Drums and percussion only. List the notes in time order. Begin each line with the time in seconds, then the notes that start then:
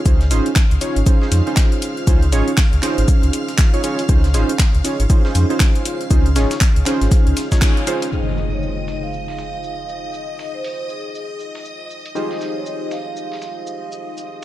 0.06 kick, closed hi-hat, shaker
0.21 snare, closed hi-hat
0.31 snare, open hi-hat, shaker
0.46 closed hi-hat
0.56 kick, snare, clap, closed hi-hat, shaker
0.71 closed hi-hat
0.81 open hi-hat, shaker
0.96 closed hi-hat
1.06 kick, closed hi-hat, shaker
1.22 snare
1.32 snare, open hi-hat, shaker
1.47 closed hi-hat
1.57 kick, snare, clap, closed hi-hat, shaker
1.72 closed hi-hat
1.82 open hi-hat, shaker
1.97 closed hi-hat
2.07 kick, closed hi-hat, shaker
2.22 closed hi-hat
2.32 snare, open hi-hat, shaker
2.48 closed hi-hat
2.57 kick, snare, clap, closed hi-hat, open hi-hat
2.73 closed hi-hat
2.83 clap, open hi-hat, shaker
2.98 closed hi-hat
3.08 kick, closed hi-hat, shaker
3.23 closed hi-hat
3.33 open hi-hat, shaker
3.48 snare, closed hi-hat
3.58 kick, snare, clap, closed hi-hat, shaker
3.74 closed hi-hat
3.84 open hi-hat, shaker
3.99 closed hi-hat, open hi-hat
4.09 kick, closed hi-hat, shaker
4.24 snare, closed hi-hat
4.34 snare, open hi-hat, shaker
4.49 closed hi-hat
4.59 kick, snare, clap, closed hi-hat, shaker
4.75 closed hi-hat
4.85 snare, open hi-hat, shaker
5.00 closed hi-hat
5.10 kick, closed hi-hat, shaker
5.25 snare
5.35 snare, open hi-hat, shaker
5.50 closed hi-hat
5.60 kick, snare, clap, closed hi-hat, shaker
5.75 closed hi-hat
5.85 open hi-hat
6.01 closed hi-hat
6.11 kick, closed hi-hat, shaker
6.26 closed hi-hat
6.36 snare, open hi-hat, shaker
6.51 snare, closed hi-hat, shaker
6.61 kick, snare, clap, closed hi-hat, open hi-hat
6.76 closed hi-hat
6.86 clap, open hi-hat, shaker
7.01 snare, closed hi-hat
7.11 kick, snare, closed hi-hat, shaker
7.27 closed hi-hat
7.37 snare, open hi-hat, shaker
7.52 kick, snare, closed hi-hat, shaker
7.62 kick, snare, clap, closed hi-hat, shaker
7.77 closed hi-hat
7.87 open hi-hat, shaker
8.02 closed hi-hat, open hi-hat
8.12 shaker
8.28 snare
8.38 snare, shaker
8.63 shaker
8.88 snare, shaker
9.13 shaker
9.28 snare
9.38 snare, shaker
9.64 shaker
9.89 shaker
10.14 shaker
10.39 snare, shaker
10.64 open hi-hat
10.90 shaker
11.15 shaker
11.40 shaker
11.55 snare
11.65 shaker
11.90 shaker
12.06 closed hi-hat
12.16 shaker
12.31 snare
12.41 snare, shaker
12.66 shaker
12.91 snare, shaker
13.17 shaker
13.32 snare
13.42 snare, shaker
13.67 shaker
13.92 shaker
14.17 shaker